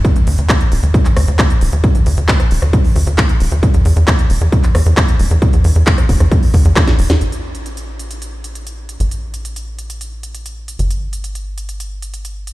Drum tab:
HH |xxoxxxoxxxoxxxox|xxoxxxoxxooxxxox|xxoxxxoxxxoxxxox|xxoxxxoxxooxxxox|
CP |----x----x--x---|----x-------x---|----x----x--x---|----x-------x---|
SD |----------r-----|-----r-r--------|----------r-----|-----r-r----oo-o|
BD |o---o---o---o---|o---o---o---o---|o---o---o---o---|o---o-o-o-o-o---|

HH |xx-xxx-xxx-xxx-x|xx-xxx-xxx-xxx-x|xx-xxx-xxx-xxx-x|
CP |----------------|----------------|----------------|
SD |----------------|----------------|----------------|
BD |----------------|----------------|----------------|